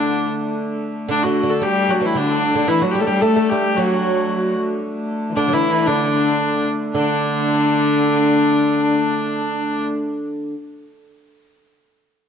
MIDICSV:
0, 0, Header, 1, 5, 480
1, 0, Start_track
1, 0, Key_signature, 2, "major"
1, 0, Tempo, 532387
1, 491, Time_signature, 2, 2, 24, 8
1, 11080, End_track
2, 0, Start_track
2, 0, Title_t, "Hurdy-gurdy"
2, 0, Program_c, 0, 110
2, 0, Note_on_c, 0, 62, 86
2, 256, Note_off_c, 0, 62, 0
2, 997, Note_on_c, 0, 62, 101
2, 1112, Note_off_c, 0, 62, 0
2, 1112, Note_on_c, 0, 66, 94
2, 1350, Note_off_c, 0, 66, 0
2, 1350, Note_on_c, 0, 69, 97
2, 1471, Note_off_c, 0, 69, 0
2, 1471, Note_on_c, 0, 67, 107
2, 1720, Note_off_c, 0, 67, 0
2, 1720, Note_on_c, 0, 66, 96
2, 1846, Note_off_c, 0, 66, 0
2, 1846, Note_on_c, 0, 64, 87
2, 1953, Note_off_c, 0, 64, 0
2, 1953, Note_on_c, 0, 62, 106
2, 2416, Note_on_c, 0, 64, 91
2, 2426, Note_off_c, 0, 62, 0
2, 2540, Note_off_c, 0, 64, 0
2, 2540, Note_on_c, 0, 66, 84
2, 2630, Note_on_c, 0, 67, 90
2, 2659, Note_off_c, 0, 66, 0
2, 2708, Note_off_c, 0, 67, 0
2, 2708, Note_on_c, 0, 69, 82
2, 2768, Note_on_c, 0, 67, 91
2, 2773, Note_off_c, 0, 69, 0
2, 2894, Note_off_c, 0, 67, 0
2, 2894, Note_on_c, 0, 69, 101
2, 3026, Note_off_c, 0, 69, 0
2, 3026, Note_on_c, 0, 69, 87
2, 3151, Note_off_c, 0, 69, 0
2, 3151, Note_on_c, 0, 67, 90
2, 3395, Note_off_c, 0, 67, 0
2, 3395, Note_on_c, 0, 66, 88
2, 4108, Note_off_c, 0, 66, 0
2, 4835, Note_on_c, 0, 62, 106
2, 4991, Note_off_c, 0, 62, 0
2, 4991, Note_on_c, 0, 64, 103
2, 5142, Note_off_c, 0, 64, 0
2, 5142, Note_on_c, 0, 64, 101
2, 5286, Note_on_c, 0, 62, 97
2, 5290, Note_off_c, 0, 64, 0
2, 6013, Note_off_c, 0, 62, 0
2, 6263, Note_on_c, 0, 62, 91
2, 8864, Note_off_c, 0, 62, 0
2, 11080, End_track
3, 0, Start_track
3, 0, Title_t, "Hurdy-gurdy"
3, 0, Program_c, 1, 110
3, 0, Note_on_c, 1, 50, 69
3, 0, Note_on_c, 1, 57, 69
3, 2418, Note_off_c, 1, 50, 0
3, 2418, Note_on_c, 1, 50, 74
3, 2420, Note_off_c, 1, 57, 0
3, 2420, Note_on_c, 1, 57, 71
3, 6260, Note_off_c, 1, 50, 0
3, 6260, Note_on_c, 1, 50, 74
3, 6270, Note_off_c, 1, 57, 0
3, 6270, Note_on_c, 1, 57, 69
3, 8911, Note_off_c, 1, 50, 0
3, 8916, Note_off_c, 1, 57, 0
3, 11080, End_track
4, 0, Start_track
4, 0, Title_t, "Oud"
4, 0, Program_c, 2, 24
4, 0, Note_on_c, 2, 50, 79
4, 220, Note_off_c, 2, 50, 0
4, 979, Note_on_c, 2, 50, 74
4, 1117, Note_off_c, 2, 50, 0
4, 1127, Note_on_c, 2, 50, 64
4, 1282, Note_off_c, 2, 50, 0
4, 1293, Note_on_c, 2, 50, 70
4, 1457, Note_on_c, 2, 55, 84
4, 1459, Note_off_c, 2, 50, 0
4, 1701, Note_on_c, 2, 54, 77
4, 1703, Note_off_c, 2, 55, 0
4, 1809, Note_off_c, 2, 54, 0
4, 1813, Note_on_c, 2, 52, 74
4, 1926, Note_off_c, 2, 52, 0
4, 1938, Note_on_c, 2, 50, 84
4, 2272, Note_off_c, 2, 50, 0
4, 2302, Note_on_c, 2, 50, 76
4, 2410, Note_off_c, 2, 50, 0
4, 2414, Note_on_c, 2, 52, 89
4, 2537, Note_off_c, 2, 52, 0
4, 2541, Note_on_c, 2, 54, 88
4, 2659, Note_on_c, 2, 55, 81
4, 2663, Note_off_c, 2, 54, 0
4, 2762, Note_off_c, 2, 55, 0
4, 2772, Note_on_c, 2, 55, 80
4, 2899, Note_off_c, 2, 55, 0
4, 2903, Note_on_c, 2, 57, 90
4, 3024, Note_off_c, 2, 57, 0
4, 3033, Note_on_c, 2, 57, 89
4, 3149, Note_off_c, 2, 57, 0
4, 3172, Note_on_c, 2, 55, 86
4, 3402, Note_off_c, 2, 55, 0
4, 3404, Note_on_c, 2, 54, 81
4, 4076, Note_off_c, 2, 54, 0
4, 4839, Note_on_c, 2, 50, 90
4, 4931, Note_off_c, 2, 50, 0
4, 4941, Note_on_c, 2, 54, 72
4, 4980, Note_off_c, 2, 54, 0
4, 4984, Note_on_c, 2, 52, 83
4, 5295, Note_off_c, 2, 52, 0
4, 5298, Note_on_c, 2, 50, 77
4, 5983, Note_off_c, 2, 50, 0
4, 6261, Note_on_c, 2, 50, 93
4, 9494, Note_off_c, 2, 50, 0
4, 11080, End_track
5, 0, Start_track
5, 0, Title_t, "Viola da gamba"
5, 0, Program_c, 3, 42
5, 0, Note_on_c, 3, 50, 78
5, 250, Note_off_c, 3, 50, 0
5, 979, Note_on_c, 3, 50, 79
5, 1424, Note_off_c, 3, 50, 0
5, 1455, Note_on_c, 3, 55, 81
5, 1709, Note_on_c, 3, 54, 79
5, 1722, Note_off_c, 3, 55, 0
5, 1943, Note_off_c, 3, 54, 0
5, 1948, Note_on_c, 3, 50, 80
5, 2278, Note_off_c, 3, 50, 0
5, 2324, Note_on_c, 3, 50, 72
5, 2423, Note_off_c, 3, 50, 0
5, 2429, Note_on_c, 3, 52, 82
5, 2553, Note_on_c, 3, 54, 87
5, 2566, Note_off_c, 3, 52, 0
5, 2665, Note_off_c, 3, 54, 0
5, 2670, Note_on_c, 3, 55, 85
5, 2704, Note_on_c, 3, 57, 76
5, 2717, Note_off_c, 3, 55, 0
5, 2736, Note_on_c, 3, 55, 90
5, 2750, Note_off_c, 3, 57, 0
5, 2779, Note_off_c, 3, 55, 0
5, 2784, Note_on_c, 3, 55, 87
5, 2903, Note_on_c, 3, 57, 102
5, 2916, Note_off_c, 3, 55, 0
5, 3377, Note_off_c, 3, 57, 0
5, 3382, Note_on_c, 3, 54, 87
5, 4065, Note_off_c, 3, 54, 0
5, 4767, Note_on_c, 3, 52, 62
5, 4805, Note_on_c, 3, 50, 91
5, 4819, Note_off_c, 3, 52, 0
5, 5133, Note_off_c, 3, 50, 0
5, 5141, Note_on_c, 3, 52, 88
5, 5300, Note_on_c, 3, 50, 87
5, 5314, Note_off_c, 3, 52, 0
5, 6020, Note_off_c, 3, 50, 0
5, 6264, Note_on_c, 3, 50, 114
5, 8864, Note_off_c, 3, 50, 0
5, 11080, End_track
0, 0, End_of_file